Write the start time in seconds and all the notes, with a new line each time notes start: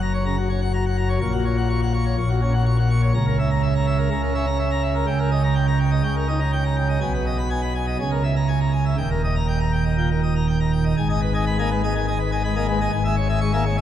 Already playing: F#1 F#2
0.02 A#5
0.14 C#5
0.25 C#3 A#5
0.37 F#4
0.49 C#5
0.61 F#5
0.73 A#5
0.86 F#5
0.97 A#5
1.09 C#5
1.21 A#1 A#2 C#6
1.33 F#4
1.45 C#5
1.57 F#5
1.69 C#6
1.81 F#5
1.94 C#6
2.06 C#5
2.18 A#1 A#2 C#6
2.29 F#4
2.42 C#4 C#5
2.54 F#5
2.66 C#6
2.78 F#5
2.90 C#6
3.02 C#5
3.14 C#2 C#3 A#5
3.27 A#4
3.39 E5
3.51 A#5
3.63 E5
3.75 A#5
3.87 E5
3.98 A#4
4.10 C#2 C#3 A#5
4.22 A#4
4.35 C#4 E5
4.47 A#5
4.59 E5
4.71 A#5
4.83 E5
4.95 A#4
5.07 C#2 C#3 G5
5.19 A#4
5.31 D#5
5.43 A#5
5.55 G5
5.67 A#5
5.79 G5
5.91 D#5
6.04 C#2 C#3 G5
6.16 A#4
6.28 D#4 D#5
6.40 A#5
6.52 G5
6.64 A#5
6.77 G5
6.89 D#5
7.01 B1 B2 G#5
7.14 B4
7.26 D#5
7.38 B5
7.50 G#5
7.62 B5
7.75 G#5
7.87 D#5
8.00 C#2 C#3 G#5
8.12 A#4
8.24 E5
8.36 A#5
8.48 G#5
8.61 A#5
8.73 G#5
8.86 E5
8.98 D#1 D#2 G5
9.11 A#4
9.24 D#5
9.36 A#5
9.48 G5
9.60 A#5
9.73 G5
9.85 D#5
9.98 A#2 G5
10.10 A#4
10.23 D#5
10.36 A#5
10.48 G5
10.60 A#5
10.73 G5
10.84 D#5
10.97 G#1 G#2 G#5
11.10 D#5 G#5
11.22 B4
11.34 D#5 G#5
11.47 G#3 B5
11.59 A#3 D#5 G#5
11.71 G#3 B4
11.84 D#5 G#5
11.95 D#3 G#5
12.08 D#5 G#5
12.19 B4
12.32 D#5 G#5
12.44 G#3 B5
12.56 A#3 D#5 G#5
12.68 G#3 B4
12.81 D#5 G#5
12.92 G#1 G#2 G#5
13.05 E5 G#5
13.17 C#5
13.29 E5 G#5
13.41 G#3 C#6
13.53 A#3 E5 G#5
13.65 G#3 C#5
13.77 E5 G#5